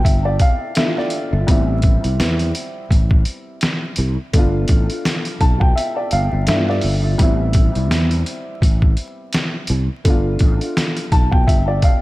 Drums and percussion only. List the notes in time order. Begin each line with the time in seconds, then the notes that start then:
0.05 kick, closed hi-hat
0.39 kick, closed hi-hat
0.75 snare, closed hi-hat
0.97 snare
1.10 closed hi-hat
1.48 kick, closed hi-hat
1.82 kick, closed hi-hat
2.04 closed hi-hat
2.20 snare, closed hi-hat
2.39 closed hi-hat
2.55 closed hi-hat
2.91 kick, closed hi-hat
3.11 kick
3.25 closed hi-hat
3.61 snare, closed hi-hat
3.96 closed hi-hat
4.34 kick, closed hi-hat
4.68 kick, closed hi-hat
4.90 closed hi-hat
5.05 snare, closed hi-hat
5.25 closed hi-hat
5.41 kick, closed hi-hat
5.61 kick
5.78 closed hi-hat
6.11 closed hi-hat
6.47 snare, closed hi-hat
6.69 snare
6.81 open hi-hat
7.19 kick, closed hi-hat
7.53 kick, closed hi-hat
7.75 closed hi-hat
7.91 snare, closed hi-hat
8.11 closed hi-hat
8.26 closed hi-hat
8.62 kick, closed hi-hat
8.82 kick
8.97 closed hi-hat
9.33 snare, closed hi-hat
9.67 closed hi-hat
10.05 kick, closed hi-hat
10.39 kick, closed hi-hat
10.61 closed hi-hat
10.77 snare, closed hi-hat
10.97 closed hi-hat
11.12 kick, closed hi-hat
11.32 kick
11.48 kick, closed hi-hat
11.82 kick, closed hi-hat